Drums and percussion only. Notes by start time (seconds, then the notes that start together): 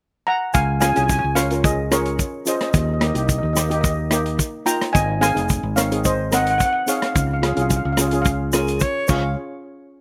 0.54 kick, closed hi-hat, shaker
0.81 cross-stick, closed hi-hat, shaker
0.96 closed hi-hat, shaker
1.09 kick, closed hi-hat, shaker
1.36 cross-stick, closed hi-hat, shaker
1.51 closed hi-hat, shaker
1.64 kick, closed hi-hat, shaker
1.92 cross-stick, closed hi-hat, shaker
2.06 closed hi-hat
2.19 kick, closed hi-hat, shaker
2.46 closed hi-hat, shaker
2.61 cross-stick, closed hi-hat
2.74 kick, closed hi-hat, shaker
3.01 cross-stick, closed hi-hat
3.15 closed hi-hat, shaker
3.29 kick, closed hi-hat, shaker
3.57 cross-stick, closed hi-hat, shaker
3.71 closed hi-hat, shaker
3.84 kick, closed hi-hat, shaker
4.11 cross-stick, closed hi-hat, shaker
4.26 closed hi-hat
4.39 kick, closed hi-hat, shaker
4.66 closed hi-hat, shaker
4.81 cross-stick, closed hi-hat
4.95 kick, closed hi-hat, shaker
5.23 cross-stick, closed hi-hat, shaker
5.37 closed hi-hat, shaker
5.49 kick, closed hi-hat, shaker
5.77 cross-stick, closed hi-hat, shaker
5.92 closed hi-hat, shaker
6.05 kick, closed hi-hat, shaker
6.32 cross-stick, closed hi-hat, shaker
6.47 closed hi-hat
6.60 kick, closed hi-hat, shaker
6.88 closed hi-hat, shaker
7.02 cross-stick, closed hi-hat
7.16 kick, closed hi-hat, shaker
7.43 cross-stick, closed hi-hat
7.57 closed hi-hat, shaker
7.70 kick, closed hi-hat, shaker
7.97 cross-stick, closed hi-hat, shaker
8.11 closed hi-hat, shaker
8.25 kick, closed hi-hat, shaker
8.53 cross-stick, closed hi-hat, shaker
8.67 closed hi-hat, shaker
8.80 kick, closed hi-hat, shaker
9.08 kick, crash, shaker